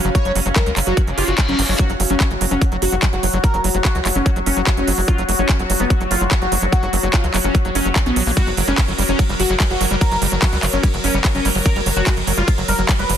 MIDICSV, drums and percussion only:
0, 0, Header, 1, 2, 480
1, 0, Start_track
1, 0, Key_signature, 6, "major"
1, 0, Tempo, 410959
1, 174, Time_signature, 4, 2, 24, 8
1, 15386, End_track
2, 0, Start_track
2, 0, Title_t, "Drums"
2, 54, Note_on_c, 9, 42, 40
2, 171, Note_off_c, 9, 42, 0
2, 174, Note_on_c, 9, 36, 106
2, 174, Note_on_c, 9, 42, 97
2, 291, Note_off_c, 9, 36, 0
2, 291, Note_off_c, 9, 42, 0
2, 294, Note_on_c, 9, 42, 45
2, 411, Note_off_c, 9, 42, 0
2, 414, Note_on_c, 9, 46, 102
2, 531, Note_off_c, 9, 46, 0
2, 534, Note_on_c, 9, 42, 41
2, 651, Note_off_c, 9, 42, 0
2, 654, Note_on_c, 9, 36, 124
2, 654, Note_on_c, 9, 39, 123
2, 654, Note_on_c, 9, 42, 96
2, 771, Note_off_c, 9, 36, 0
2, 771, Note_off_c, 9, 39, 0
2, 771, Note_off_c, 9, 42, 0
2, 775, Note_on_c, 9, 42, 42
2, 891, Note_off_c, 9, 42, 0
2, 894, Note_on_c, 9, 39, 64
2, 894, Note_on_c, 9, 46, 105
2, 1011, Note_off_c, 9, 39, 0
2, 1011, Note_off_c, 9, 46, 0
2, 1014, Note_on_c, 9, 42, 43
2, 1131, Note_off_c, 9, 42, 0
2, 1134, Note_on_c, 9, 36, 114
2, 1134, Note_on_c, 9, 42, 101
2, 1251, Note_off_c, 9, 36, 0
2, 1251, Note_off_c, 9, 42, 0
2, 1254, Note_on_c, 9, 42, 43
2, 1371, Note_off_c, 9, 42, 0
2, 1374, Note_on_c, 9, 46, 106
2, 1491, Note_off_c, 9, 46, 0
2, 1494, Note_on_c, 9, 42, 43
2, 1611, Note_off_c, 9, 42, 0
2, 1614, Note_on_c, 9, 36, 113
2, 1614, Note_on_c, 9, 39, 119
2, 1614, Note_on_c, 9, 42, 96
2, 1731, Note_off_c, 9, 36, 0
2, 1731, Note_off_c, 9, 39, 0
2, 1731, Note_off_c, 9, 42, 0
2, 1734, Note_on_c, 9, 42, 42
2, 1851, Note_off_c, 9, 42, 0
2, 1854, Note_on_c, 9, 46, 99
2, 1971, Note_off_c, 9, 46, 0
2, 1974, Note_on_c, 9, 46, 60
2, 2091, Note_off_c, 9, 46, 0
2, 2094, Note_on_c, 9, 36, 110
2, 2094, Note_on_c, 9, 42, 100
2, 2211, Note_off_c, 9, 36, 0
2, 2211, Note_off_c, 9, 42, 0
2, 2214, Note_on_c, 9, 42, 44
2, 2331, Note_off_c, 9, 42, 0
2, 2334, Note_on_c, 9, 46, 105
2, 2451, Note_off_c, 9, 46, 0
2, 2454, Note_on_c, 9, 42, 43
2, 2571, Note_off_c, 9, 42, 0
2, 2574, Note_on_c, 9, 36, 126
2, 2574, Note_on_c, 9, 39, 121
2, 2574, Note_on_c, 9, 42, 97
2, 2691, Note_off_c, 9, 36, 0
2, 2691, Note_off_c, 9, 39, 0
2, 2691, Note_off_c, 9, 42, 0
2, 2694, Note_on_c, 9, 42, 40
2, 2811, Note_off_c, 9, 42, 0
2, 2814, Note_on_c, 9, 46, 100
2, 2931, Note_off_c, 9, 46, 0
2, 2934, Note_on_c, 9, 42, 44
2, 3051, Note_off_c, 9, 42, 0
2, 3054, Note_on_c, 9, 36, 114
2, 3054, Note_on_c, 9, 42, 95
2, 3171, Note_off_c, 9, 36, 0
2, 3171, Note_off_c, 9, 42, 0
2, 3174, Note_on_c, 9, 42, 43
2, 3291, Note_off_c, 9, 42, 0
2, 3294, Note_on_c, 9, 46, 109
2, 3411, Note_off_c, 9, 46, 0
2, 3414, Note_on_c, 9, 42, 42
2, 3531, Note_off_c, 9, 42, 0
2, 3534, Note_on_c, 9, 36, 112
2, 3534, Note_on_c, 9, 39, 120
2, 3534, Note_on_c, 9, 42, 94
2, 3651, Note_off_c, 9, 36, 0
2, 3651, Note_off_c, 9, 39, 0
2, 3651, Note_off_c, 9, 42, 0
2, 3654, Note_on_c, 9, 42, 41
2, 3771, Note_off_c, 9, 42, 0
2, 3774, Note_on_c, 9, 46, 102
2, 3891, Note_off_c, 9, 46, 0
2, 3894, Note_on_c, 9, 42, 41
2, 4011, Note_off_c, 9, 42, 0
2, 4014, Note_on_c, 9, 36, 117
2, 4014, Note_on_c, 9, 42, 97
2, 4131, Note_off_c, 9, 36, 0
2, 4131, Note_off_c, 9, 42, 0
2, 4134, Note_on_c, 9, 42, 41
2, 4251, Note_off_c, 9, 42, 0
2, 4254, Note_on_c, 9, 46, 105
2, 4371, Note_off_c, 9, 46, 0
2, 4374, Note_on_c, 9, 42, 40
2, 4491, Note_off_c, 9, 42, 0
2, 4494, Note_on_c, 9, 36, 127
2, 4494, Note_on_c, 9, 39, 126
2, 4494, Note_on_c, 9, 42, 95
2, 4611, Note_off_c, 9, 36, 0
2, 4611, Note_off_c, 9, 39, 0
2, 4611, Note_off_c, 9, 42, 0
2, 4614, Note_on_c, 9, 42, 42
2, 4731, Note_off_c, 9, 42, 0
2, 4734, Note_on_c, 9, 39, 64
2, 4734, Note_on_c, 9, 46, 108
2, 4851, Note_off_c, 9, 39, 0
2, 4851, Note_off_c, 9, 46, 0
2, 4854, Note_on_c, 9, 42, 42
2, 4971, Note_off_c, 9, 42, 0
2, 4974, Note_on_c, 9, 36, 121
2, 4974, Note_on_c, 9, 42, 91
2, 5091, Note_off_c, 9, 36, 0
2, 5091, Note_off_c, 9, 42, 0
2, 5094, Note_on_c, 9, 42, 41
2, 5211, Note_off_c, 9, 42, 0
2, 5214, Note_on_c, 9, 46, 111
2, 5331, Note_off_c, 9, 46, 0
2, 5334, Note_on_c, 9, 42, 42
2, 5451, Note_off_c, 9, 42, 0
2, 5454, Note_on_c, 9, 36, 115
2, 5454, Note_on_c, 9, 39, 125
2, 5454, Note_on_c, 9, 42, 95
2, 5571, Note_off_c, 9, 36, 0
2, 5571, Note_off_c, 9, 39, 0
2, 5571, Note_off_c, 9, 42, 0
2, 5574, Note_on_c, 9, 42, 38
2, 5691, Note_off_c, 9, 42, 0
2, 5694, Note_on_c, 9, 46, 105
2, 5811, Note_off_c, 9, 46, 0
2, 5814, Note_on_c, 9, 46, 61
2, 5931, Note_off_c, 9, 46, 0
2, 5934, Note_on_c, 9, 36, 116
2, 5934, Note_on_c, 9, 42, 86
2, 6051, Note_off_c, 9, 36, 0
2, 6051, Note_off_c, 9, 42, 0
2, 6054, Note_on_c, 9, 42, 42
2, 6171, Note_off_c, 9, 42, 0
2, 6174, Note_on_c, 9, 46, 118
2, 6291, Note_off_c, 9, 46, 0
2, 6294, Note_on_c, 9, 42, 40
2, 6411, Note_off_c, 9, 42, 0
2, 6414, Note_on_c, 9, 36, 127
2, 6414, Note_on_c, 9, 39, 127
2, 6414, Note_on_c, 9, 42, 95
2, 6531, Note_off_c, 9, 36, 0
2, 6531, Note_off_c, 9, 39, 0
2, 6531, Note_off_c, 9, 42, 0
2, 6534, Note_on_c, 9, 42, 40
2, 6651, Note_off_c, 9, 42, 0
2, 6654, Note_on_c, 9, 46, 116
2, 6771, Note_off_c, 9, 46, 0
2, 6775, Note_on_c, 9, 42, 40
2, 6891, Note_off_c, 9, 42, 0
2, 6894, Note_on_c, 9, 36, 124
2, 6894, Note_on_c, 9, 42, 93
2, 7011, Note_off_c, 9, 36, 0
2, 7011, Note_off_c, 9, 42, 0
2, 7014, Note_on_c, 9, 42, 40
2, 7131, Note_off_c, 9, 42, 0
2, 7134, Note_on_c, 9, 46, 116
2, 7251, Note_off_c, 9, 46, 0
2, 7254, Note_on_c, 9, 42, 39
2, 7371, Note_off_c, 9, 42, 0
2, 7374, Note_on_c, 9, 36, 126
2, 7374, Note_on_c, 9, 39, 121
2, 7374, Note_on_c, 9, 42, 90
2, 7491, Note_off_c, 9, 36, 0
2, 7491, Note_off_c, 9, 39, 0
2, 7491, Note_off_c, 9, 42, 0
2, 7494, Note_on_c, 9, 42, 39
2, 7611, Note_off_c, 9, 42, 0
2, 7614, Note_on_c, 9, 46, 105
2, 7731, Note_off_c, 9, 46, 0
2, 7854, Note_on_c, 9, 36, 114
2, 7854, Note_on_c, 9, 42, 88
2, 7971, Note_off_c, 9, 36, 0
2, 7971, Note_off_c, 9, 42, 0
2, 7975, Note_on_c, 9, 42, 40
2, 8091, Note_off_c, 9, 42, 0
2, 8094, Note_on_c, 9, 46, 109
2, 8211, Note_off_c, 9, 46, 0
2, 8215, Note_on_c, 9, 42, 39
2, 8331, Note_off_c, 9, 42, 0
2, 8334, Note_on_c, 9, 36, 127
2, 8334, Note_on_c, 9, 39, 122
2, 8334, Note_on_c, 9, 42, 85
2, 8451, Note_off_c, 9, 36, 0
2, 8451, Note_off_c, 9, 39, 0
2, 8451, Note_off_c, 9, 42, 0
2, 8455, Note_on_c, 9, 42, 41
2, 8571, Note_off_c, 9, 42, 0
2, 8575, Note_on_c, 9, 39, 59
2, 8575, Note_on_c, 9, 46, 117
2, 8691, Note_off_c, 9, 39, 0
2, 8691, Note_off_c, 9, 46, 0
2, 8694, Note_on_c, 9, 42, 41
2, 8811, Note_off_c, 9, 42, 0
2, 8814, Note_on_c, 9, 36, 122
2, 8814, Note_on_c, 9, 42, 90
2, 8931, Note_off_c, 9, 36, 0
2, 8931, Note_off_c, 9, 42, 0
2, 8934, Note_on_c, 9, 42, 38
2, 9051, Note_off_c, 9, 42, 0
2, 9054, Note_on_c, 9, 46, 114
2, 9171, Note_off_c, 9, 46, 0
2, 9175, Note_on_c, 9, 42, 38
2, 9291, Note_off_c, 9, 42, 0
2, 9294, Note_on_c, 9, 36, 117
2, 9294, Note_on_c, 9, 39, 116
2, 9294, Note_on_c, 9, 42, 88
2, 9411, Note_off_c, 9, 36, 0
2, 9411, Note_off_c, 9, 39, 0
2, 9411, Note_off_c, 9, 42, 0
2, 9414, Note_on_c, 9, 42, 38
2, 9531, Note_off_c, 9, 42, 0
2, 9534, Note_on_c, 9, 46, 108
2, 9651, Note_off_c, 9, 46, 0
2, 9654, Note_on_c, 9, 46, 65
2, 9771, Note_off_c, 9, 46, 0
2, 9774, Note_on_c, 9, 36, 114
2, 9774, Note_on_c, 9, 42, 89
2, 9774, Note_on_c, 9, 51, 66
2, 9891, Note_off_c, 9, 36, 0
2, 9891, Note_off_c, 9, 42, 0
2, 9891, Note_off_c, 9, 51, 0
2, 9894, Note_on_c, 9, 42, 38
2, 10011, Note_off_c, 9, 42, 0
2, 10014, Note_on_c, 9, 46, 106
2, 10131, Note_off_c, 9, 46, 0
2, 10134, Note_on_c, 9, 42, 40
2, 10251, Note_off_c, 9, 42, 0
2, 10254, Note_on_c, 9, 36, 127
2, 10254, Note_on_c, 9, 39, 116
2, 10254, Note_on_c, 9, 42, 87
2, 10254, Note_on_c, 9, 51, 71
2, 10371, Note_off_c, 9, 36, 0
2, 10371, Note_off_c, 9, 39, 0
2, 10371, Note_off_c, 9, 42, 0
2, 10371, Note_off_c, 9, 51, 0
2, 10374, Note_on_c, 9, 42, 40
2, 10491, Note_off_c, 9, 42, 0
2, 10494, Note_on_c, 9, 46, 106
2, 10611, Note_off_c, 9, 46, 0
2, 10614, Note_on_c, 9, 42, 39
2, 10731, Note_off_c, 9, 42, 0
2, 10734, Note_on_c, 9, 36, 117
2, 10734, Note_on_c, 9, 42, 89
2, 10734, Note_on_c, 9, 51, 69
2, 10851, Note_off_c, 9, 36, 0
2, 10851, Note_off_c, 9, 42, 0
2, 10851, Note_off_c, 9, 51, 0
2, 10854, Note_on_c, 9, 42, 38
2, 10971, Note_off_c, 9, 42, 0
2, 10974, Note_on_c, 9, 46, 104
2, 11091, Note_off_c, 9, 46, 0
2, 11094, Note_on_c, 9, 42, 38
2, 11211, Note_off_c, 9, 42, 0
2, 11214, Note_on_c, 9, 36, 119
2, 11214, Note_on_c, 9, 39, 115
2, 11214, Note_on_c, 9, 42, 88
2, 11214, Note_on_c, 9, 51, 63
2, 11331, Note_off_c, 9, 36, 0
2, 11331, Note_off_c, 9, 39, 0
2, 11331, Note_off_c, 9, 42, 0
2, 11331, Note_off_c, 9, 51, 0
2, 11334, Note_on_c, 9, 42, 39
2, 11451, Note_off_c, 9, 42, 0
2, 11454, Note_on_c, 9, 46, 100
2, 11571, Note_off_c, 9, 46, 0
2, 11574, Note_on_c, 9, 42, 38
2, 11691, Note_off_c, 9, 42, 0
2, 11694, Note_on_c, 9, 36, 107
2, 11694, Note_on_c, 9, 42, 89
2, 11694, Note_on_c, 9, 51, 70
2, 11811, Note_off_c, 9, 36, 0
2, 11811, Note_off_c, 9, 42, 0
2, 11811, Note_off_c, 9, 51, 0
2, 11814, Note_on_c, 9, 42, 41
2, 11931, Note_off_c, 9, 42, 0
2, 11934, Note_on_c, 9, 46, 108
2, 12051, Note_off_c, 9, 46, 0
2, 12054, Note_on_c, 9, 42, 40
2, 12171, Note_off_c, 9, 42, 0
2, 12174, Note_on_c, 9, 36, 122
2, 12174, Note_on_c, 9, 39, 118
2, 12174, Note_on_c, 9, 42, 97
2, 12174, Note_on_c, 9, 51, 74
2, 12291, Note_off_c, 9, 36, 0
2, 12291, Note_off_c, 9, 39, 0
2, 12291, Note_off_c, 9, 42, 0
2, 12291, Note_off_c, 9, 51, 0
2, 12294, Note_on_c, 9, 42, 40
2, 12411, Note_off_c, 9, 42, 0
2, 12414, Note_on_c, 9, 39, 58
2, 12414, Note_on_c, 9, 46, 102
2, 12531, Note_off_c, 9, 39, 0
2, 12531, Note_off_c, 9, 46, 0
2, 12534, Note_on_c, 9, 42, 41
2, 12651, Note_off_c, 9, 42, 0
2, 12654, Note_on_c, 9, 36, 118
2, 12654, Note_on_c, 9, 42, 95
2, 12654, Note_on_c, 9, 51, 69
2, 12771, Note_off_c, 9, 36, 0
2, 12771, Note_off_c, 9, 42, 0
2, 12771, Note_off_c, 9, 51, 0
2, 12774, Note_on_c, 9, 42, 39
2, 12891, Note_off_c, 9, 42, 0
2, 12894, Note_on_c, 9, 46, 100
2, 13011, Note_off_c, 9, 46, 0
2, 13014, Note_on_c, 9, 42, 40
2, 13131, Note_off_c, 9, 42, 0
2, 13134, Note_on_c, 9, 36, 113
2, 13134, Note_on_c, 9, 39, 111
2, 13134, Note_on_c, 9, 42, 88
2, 13134, Note_on_c, 9, 51, 68
2, 13251, Note_off_c, 9, 36, 0
2, 13251, Note_off_c, 9, 39, 0
2, 13251, Note_off_c, 9, 42, 0
2, 13251, Note_off_c, 9, 51, 0
2, 13254, Note_on_c, 9, 42, 41
2, 13371, Note_off_c, 9, 42, 0
2, 13374, Note_on_c, 9, 46, 98
2, 13491, Note_off_c, 9, 46, 0
2, 13494, Note_on_c, 9, 46, 55
2, 13611, Note_off_c, 9, 46, 0
2, 13614, Note_on_c, 9, 36, 109
2, 13614, Note_on_c, 9, 42, 97
2, 13614, Note_on_c, 9, 51, 73
2, 13731, Note_off_c, 9, 36, 0
2, 13731, Note_off_c, 9, 42, 0
2, 13731, Note_off_c, 9, 51, 0
2, 13734, Note_on_c, 9, 42, 44
2, 13851, Note_off_c, 9, 42, 0
2, 13854, Note_on_c, 9, 46, 99
2, 13971, Note_off_c, 9, 46, 0
2, 13974, Note_on_c, 9, 42, 44
2, 14091, Note_off_c, 9, 42, 0
2, 14094, Note_on_c, 9, 36, 122
2, 14094, Note_on_c, 9, 39, 124
2, 14094, Note_on_c, 9, 42, 100
2, 14094, Note_on_c, 9, 51, 69
2, 14211, Note_off_c, 9, 36, 0
2, 14211, Note_off_c, 9, 39, 0
2, 14211, Note_off_c, 9, 42, 0
2, 14211, Note_off_c, 9, 51, 0
2, 14214, Note_on_c, 9, 42, 42
2, 14331, Note_off_c, 9, 42, 0
2, 14334, Note_on_c, 9, 46, 102
2, 14451, Note_off_c, 9, 46, 0
2, 14454, Note_on_c, 9, 42, 42
2, 14571, Note_off_c, 9, 42, 0
2, 14574, Note_on_c, 9, 36, 119
2, 14574, Note_on_c, 9, 42, 99
2, 14574, Note_on_c, 9, 51, 71
2, 14691, Note_off_c, 9, 36, 0
2, 14691, Note_off_c, 9, 42, 0
2, 14691, Note_off_c, 9, 51, 0
2, 14694, Note_on_c, 9, 42, 42
2, 14811, Note_off_c, 9, 42, 0
2, 14814, Note_on_c, 9, 46, 105
2, 14931, Note_off_c, 9, 46, 0
2, 14934, Note_on_c, 9, 42, 42
2, 15051, Note_off_c, 9, 42, 0
2, 15054, Note_on_c, 9, 36, 117
2, 15054, Note_on_c, 9, 39, 120
2, 15054, Note_on_c, 9, 42, 100
2, 15054, Note_on_c, 9, 51, 68
2, 15171, Note_off_c, 9, 36, 0
2, 15171, Note_off_c, 9, 39, 0
2, 15171, Note_off_c, 9, 42, 0
2, 15171, Note_off_c, 9, 51, 0
2, 15174, Note_on_c, 9, 42, 41
2, 15291, Note_off_c, 9, 42, 0
2, 15294, Note_on_c, 9, 46, 99
2, 15386, Note_off_c, 9, 46, 0
2, 15386, End_track
0, 0, End_of_file